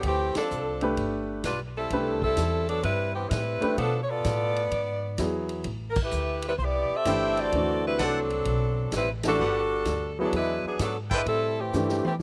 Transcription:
0.03 D2 E3 A3 C4 G4, kick, ride
0.35 F3 C4 D4 A4, muted upright bass stroke, snare, ride
0.51 C2, hi-hat pedal
0.81 A3 D4 G4 B4, ride
0.97 G1, kick, ride
1.44 B1 G3 D4 F4 B4, kick, snare, hi-hat pedal, ride
1.78 G3 C4 E4 A4
1.90 C2 A3 D4 G4 B4, kick, ride
2.22 G3 C4 E4 A4, kick
2.37 E2, kick, snare, hi-hat pedal, ride
2.68 F#3 B3 D4 A4, ride
2.83 G2 G3 C4 E4 B4, kick, ride
3.14 E3 B3 C4 G4
3.29 A2 G3 C4 E4 B4, kick, snare, hi-hat pedal, ride
3.61 A3 D4 G4 B4, muted upright bass stroke, ride
3.77 B2 F3 B3 D4 A4, kick, ride
4.02 C#5
4.09 B3 F4 A4 D5
4.24 A2, kick, snare, hi-hat pedal, ride
4.56 ride
4.71 G#2, kick, ride
5.18 E2 F#3 B3 E4 G#4, kick, snare, hi-hat pedal, ride
5.49 ride
5.64 A1, kick, ride
5.90 A#4
5.96 kick, crash
6.03 A3 E4 G4 B4
6.11 D2, hi-hat pedal
6.42 ride
6.47 G3 C4 E4 B4
6.58 C2 C5, kick
6.63 B3 E4 G4 D5
6.90 muted upright bass stroke
6.95 C4 G4 A4 E5
7.05 G1 E3 A3 D4 E4 G4 A4 C5 G5, kick, snare, hi-hat pedal, ride
7.37 F#4 D5, ride
7.41 C4 A4
7.52 D2 E3 A3 D4 F#4, kick, ride
7.87 G3 C4 E4 B4
7.99 C2 F#3 C4 D4 A4 C5 F#5, kick, snare, hi-hat pedal, ride
8.30 ride
8.45 B1, kick, ride
8.92 A1 G3 B4, kick, snare, hi-hat pedal, ride
8.96 C4 E4
9.23 E3 A3 D4 F#4, snare, ride
9.27 G3 A4
9.40 G1 D4 G4 B4 F#5
9.85 D2, kick, snare, hi-hat pedal, ride
10.19 F#3 B3 D4 E4 G#4 A4
10.33 E2 G#3 D4 E4 B4, kick, ride
10.64 E3 B3 D4 G#4, muted upright bass stroke
10.79 G#2 F#3 B3 D4 A4, kick, snare, hi-hat pedal, ride
11.11 G#3 D4 E4 A4 B4 C5 G5, kick, ride
11.26 A2 G3 C4 E4 A4, kick, ride
11.59 E3 A3 C4 G4
11.73 G2 E3 A3 D4 G4, snare, hi-hat pedal
11.89 snare
12.05 E3 A3 C4 G4, muted upright bass stroke, high tom

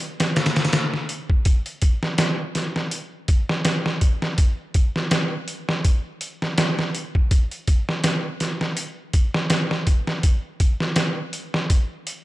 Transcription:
0.00 closed hi-hat
0.20 snare, closed hi-hat
0.36 snare, closed hi-hat
0.46 snare, closed hi-hat
0.56 snare, closed hi-hat
0.65 snare, closed hi-hat
0.73 snare, closed hi-hat
0.94 snare
1.09 closed hi-hat
1.30 kick
1.45 kick, closed hi-hat
1.66 closed hi-hat
1.82 kick, closed hi-hat
2.03 snare
2.18 snare, closed hi-hat
2.55 snare, closed hi-hat
2.76 snare
2.91 closed hi-hat
3.28 kick, closed hi-hat
3.49 snare
3.65 snare, closed hi-hat
3.86 snare
4.01 kick, closed hi-hat
4.22 snare
4.38 kick, closed hi-hat
4.74 kick, closed hi-hat
4.96 snare
5.11 snare, closed hi-hat
5.48 closed hi-hat
5.69 snare
5.85 kick, closed hi-hat
6.21 closed hi-hat
6.42 snare
6.58 snare, closed hi-hat
6.79 snare
6.95 closed hi-hat
7.15 kick
7.31 kick, closed hi-hat
7.51 closed hi-hat
7.68 kick, closed hi-hat
7.89 snare
8.04 snare, closed hi-hat
8.40 snare, closed hi-hat
8.61 snare
8.77 closed hi-hat
9.13 kick, closed hi-hat
9.34 snare
9.50 snare, closed hi-hat
9.71 snare
9.87 kick, closed hi-hat
10.07 snare
10.23 kick, closed hi-hat
10.60 kick, closed hi-hat
10.80 snare
10.96 snare, closed hi-hat
11.33 closed hi-hat
11.54 snare
11.70 kick, closed hi-hat
12.07 closed hi-hat

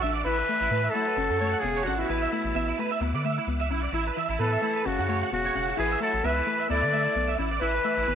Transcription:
Already playing: E5 F#5 D6
0.01 A1 D4 E5
0.14 D5
0.25 A1 E3 E4 B4 E5 A5 B5
0.38 B4
0.49 A3
0.61 A1 E4
0.71 A2 A3 B4
0.84 E5
0.90 F#3 A4
0.94 A3 E4
1.07 B4
1.17 F#1 C#4 F#5 C#6
1.29 F#2 A4
1.40 A3 C#5
1.52 F#5
1.60 E1 C#3 G#4
1.64 B3
1.76 C#5
1.83 G#1 D3 F#4 F#5
1.87 C#4
1.97 B2 E4 F#4
2.08 A1 E4 B4 E5 A5 B5
2.22 E5
2.32 A3 E4
2.44 A1
2.55 A1 B3 E5
2.68 E4
2.79 A3 B4
2.91 E5
3.00 D2 B3 F#5 D6, muted clean electric guitar stroke
3.13 D3 D5
3.25 A3 E5
3.38 E4
3.47 C#2 B3
3.60 E5
3.70 B1 C#4 E4
3.83 D5
3.92 A1 E4 A5 B5
4.07 B4
4.17 E3 E5
4.29 A1 E4
4.39 A2 E3 B3 A4 B4
4.52 E5
4.62 A3 E4
4.75 B4
4.86 F#1 C#3 C#4 F#4 F#5 C#6
4.98 F#2 F#4
5.09 A3 C#5
5.22 F#5
5.32 E1 C#3 B3 F#4
5.45 C#5
5.55 E1 C#4 F#5
5.69 F#4
5.77 A1 E3 E4 G#4 B4 E5 B5
5.91 E5
6.00 F#3 A3 E4 A4
6.13 A1
6.23 C#2 E3 B3 B4 E5
6.37 E4
6.46 A3 B4
6.60 E5
6.69 D2 A3 B3 E4 D5 E5 F#5 D6
6.82 D3 D5
6.93 A3 E5
7.05 E4
7.15 B1 B3
7.28 E5
7.38 A1 C#4 E4
7.51 D5
7.61 A1 E3 E4 B4 A5 B5
7.74 B4
7.84 A3 E5
7.97 A1 E4
8.07 G#1 B3 B4

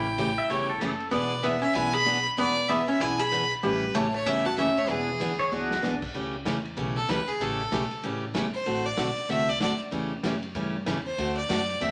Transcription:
Already playing: A1 E4 G5
0.18 C#3 E3 A3 C#4 G4, hi-hat pedal, ride
0.38 E5
0.50 G1 C#3 E3 A3 C#4 G4 C#5, ride
0.69 A4
0.81 F#1 C#3 E3 A3 C#4 G4 A4, hi-hat pedal, ride
1.00 ride
1.11 E1 E3 B3 D4 G#4 D5, ride
1.43 E3 B3 D4 G#4 E5, hi-hat pedal, ride
1.61 C#4 E5, ride
1.74 B1 E3 B3 D4 E4 G#4 G#5, ride
1.93 G#4 B5
2.05 E3 B3 D4 G#4, hi-hat pedal, ride
2.26 ride
2.38 E1 E3 B3 D4 G#4 D5, ride
2.69 E3 B3 D4 G#4 E5, hi-hat pedal, ride
2.88 C#4 E5, ride
3.00 B1 E3 B3 D4 E4 G#4 G#5, ride
3.19 G#4 B5
3.32 E3 B3 D4 G#4, hi-hat pedal, ride
3.51 ride
3.63 A1 C#3 E3 G3 A3 C#4 G4 B4, ride
3.94 A1 C#3 E3 A3 C#4 G4 C#5, hi-hat pedal, ride
4.14 A3 C#5, ride
4.26 G1 C#3 E3 A3 C#4 G4 E5, ride
4.46 F#4 A5
4.57 F#1 C#3 E3 A3 C#4 G4 E5, hi-hat pedal, ride
4.77 A3 C#5, ride
4.89 E1 E3 B3 D4 G#4, ride
5.20 D2 E3 B3 D4 G#4, hi-hat pedal, ride
5.39 C#5, ride
5.52 C#2 E3 B3 D4 F#4 G#4
5.71 snare
5.82 B1 E3 B3 D4 G#4, snare, hi-hat pedal
6.02 kick, crash
6.14 C#2 C#3 E3 A3 C#4 G4
6.45 E2 C#3 E3 A3 C#4 G4, snare, hi-hat pedal, ride
6.65 ride
6.77 B1 C#3 E3 A3 C#4 G4, ride
6.96 A4
7.08 C#2 C#3 E3 A3 C#4 G4 B4, snare, hi-hat pedal, ride
7.27 G#4, muted upright bass stroke, ride
7.39 A1 C#3 E3 A3 C#4 G4 A4, ride
7.71 B1 C#3 E3 A3 C#4 G4, snare, hi-hat pedal, ride
7.91 ride
8.03 A1 C#3 E3 A3 C#4 G4, ride
8.34 G1 C#3 E3 A3 C#4 G4, snare, hi-hat pedal, ride
8.54 C5, muted upright bass stroke
8.66 A1 D3 A3 C4 F#4 A4, ride
8.86 D5
8.97 B1 D3 A3 C4 F#4 A4, snare, hi-hat pedal, ride
9.17 muted upright bass stroke, ride
9.29 C2 D3 A3 C4 F#4 A4 E5, ride
9.49 D5
9.60 D2 D3 A3 C4 F#4 A4 D5, snare, hi-hat pedal, ride
9.80 muted upright bass stroke, ride
9.91 E2 C#3 E3 A3 C#4 G4, ride
10.23 F#2 C#3 E3 A3 C#4 G4, snare, hi-hat pedal, ride
10.43 ride
10.55 G2 C#3 E3 A3 C#4 G4, ride
10.86 E2 C#3 E3 A3 C#4 G4, snare, hi-hat pedal, ride
11.06 C5
11.18 D2 D3 A3 C4 F#4 A4, ride
11.37 D5
11.49 F#2 D3 A3 C4 F#4 A4, snare, hi-hat pedal, ride
11.69 ride
11.81 E2 D3 A3 C4 F#4 A4 E5, ride

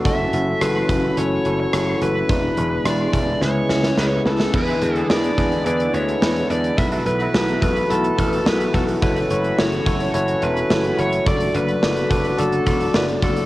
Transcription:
Already playing: A3 F#4
0.05 F#1 E3 C#4 E4 F#4 A4 E5, kick, closed hi-hat
0.33 F#1 C#4 E4 F#4 A4, closed hi-hat
0.61 F#1 C#4 E4 F#4 A4 B4, cross-stick, closed hi-hat
0.89 F#1 C#4 E4 F#4 A4, kick, closed hi-hat
1.17 F#1 C#4 E4 F#4 A4 C#5, closed hi-hat
1.45 F#1 C#4 E4 F#4 A4, closed hi-hat
1.60 C#5
1.73 F#1 C#4 E4 F#4 A4, cross-stick, closed hi-hat
2.01 F#1 C#4 E4 F#4 A4 B4, closed hi-hat
2.29 E1 D3 E3 G#3 B3 D4 E4 G#4 B4, kick, closed hi-hat
2.57 E1 D4 E4 G#4 B4, closed hi-hat
2.85 E1 D4 E4 G#4 B4 D5, cross-stick, closed hi-hat
3.13 E1 D4 E4 G#4 B4, kick, closed hi-hat
3.41 C#2 C#3 B3 C#4 E4 G#4 B4 C#5, snare
3.69 C#2 C#4 E4 G#4 B4, snare
3.83 snare
3.97 C#2 C#4 E4 G#4 B4, snare
4.25 C#2 C#4 E4 G#4 A4 B4, snare
4.40 snare
4.53 E2 D3 E3 G#3 B3 D4 E4 G#4 B4, kick, crash
4.68 G#3 E4 B4, closed hi-hat
4.81 E2 D4 E4 G#4 B4, closed hi-hat
4.95 E3 D4 G#4 A4, closed hi-hat
5.09 E2 D4 E4 G#4 B4 D5, snare
5.24 closed hi-hat
5.37 E2 D4 E4 G#4 B4, kick, closed hi-hat
5.52 closed hi-hat
5.65 E2 D4 E4 G#4 B4 D5, closed hi-hat
5.80 closed hi-hat
5.93 D2 D4 E4 G#4 B4 C#5, closed hi-hat
6.08 closed hi-hat
6.22 E2 D4 E4 G#4 B4, snare
6.36 closed hi-hat
6.50 E2 D4 E4 G#4 B4 D5, closed hi-hat
6.64 closed hi-hat
6.78 B1 B2 E3 A3 B3 E4 F#4 A4 B4 E5, kick, closed hi-hat
6.92 F#3 E4 A4, closed hi-hat
7.06 B1 E4 F#4 A4 B4, closed hi-hat
7.20 F#3 E4 B4, closed hi-hat
7.34 B1 E4 F#4 A4 B4, snare
7.48 closed hi-hat
7.62 B1 E4 F#4 A4 B4, kick, closed hi-hat
7.76 closed hi-hat
7.90 B1 E4 F#4 A4 B4, closed hi-hat
8.04 closed hi-hat
8.18 A1 E4 F#4 A4 B4, kick, closed hi-hat
8.33 closed hi-hat
8.45 B1 E4 F#4 A4 B4, snare
8.60 closed hi-hat
8.73 B1 E4 F#4 A4 B4, kick, closed hi-hat
8.88 closed hi-hat
9.02 F#1 C#4 E4 F#4 A4 B4 C#5, kick, closed hi-hat
9.16 closed hi-hat
9.29 F#1 E4 F#4 A4 C#5, closed hi-hat
9.44 closed hi-hat
9.58 F#1 E4 F#4 A4 C#5, snare
9.72 closed hi-hat
9.86 F#1 E4 F#4 A4 C#5, kick, closed hi-hat
10.00 closed hi-hat
10.14 F#1 E4 F#4 A4 C#5, closed hi-hat
10.28 closed hi-hat
10.41 E1 E4 F#4 A4 B4 C#5, closed hi-hat
10.57 closed hi-hat
10.70 F#1 E4 F#4 A4 C#5, snare
10.84 closed hi-hat
10.98 F#1 E4 F#4 A4 C#5, closed hi-hat
11.13 closed hi-hat
11.26 F#1 D3 F#3 D4 F#4 A4 D5, kick, closed hi-hat
11.40 closed hi-hat
11.54 F#1 D4 F#4 A4 B4 D5, closed hi-hat
11.68 closed hi-hat
11.82 F#1 D4 F#4 A4 D5, snare
11.96 closed hi-hat
12.10 F#1 D4 F#4 A4 B4 D5, kick, closed hi-hat
12.25 closed hi-hat
12.38 F#1 D4 F#4 A4 D5, closed hi-hat
12.52 closed hi-hat
12.66 E1 D4 F#4 A4 D5, kick, closed hi-hat
12.81 closed hi-hat
12.94 F#1 D4 F#4 A4 B4 D5, snare
13.08 closed hi-hat
13.22 F#1 D4 F#4 A4 D5, kick, closed hi-hat
13.36 closed hi-hat

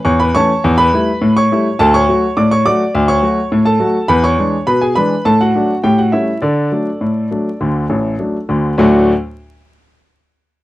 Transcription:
0.05 E2 C#5 C#6
0.20 B4 B5
0.35 E3 A3 C#4 C#5 A5 C#6
0.64 E2
0.78 B4 B5
0.93 G3 A3 E4
1.22 A2
1.37 C#5 C#6
1.52 G3 A3 E4
1.79 D2 A4 A5
1.94 C#5 C#6
2.09 F#3 A3 F#4
2.37 A2 D5 D6
2.51 C#5 C#6
2.65 F#3 A3 F#4 D5 D6
2.95 D2
3.08 C#5 C#6
3.23 F#3 A3 F#4
3.52 A2
3.65 A4 A5
3.79 F#3 A3 F#4
4.08 E2 B4 B5
4.24 C#5 C#6
4.38 E3 G#3 D4
4.67 B2 B4 B5
4.81 G#4 G#5
4.95 E3 G#3 D4 B4 B5
5.25 A2 A4 A5
5.41 F#4 F#5
5.55 F#3 A3 D4
5.83 A2 G4 G5
5.98 F#4 F#5
6.12 G3 A3 C#4 E4 E5
6.42 D3 D4 A4 D5
6.72 F#3 A3 D4
7.01 A2
7.31 F#3 A3 D4
7.61 D2 D3
7.90 A1 A2
8.19 F#3 A3 D4
8.49 D2 D3
8.78 D2 A2 F#3 A3 D4 F#4

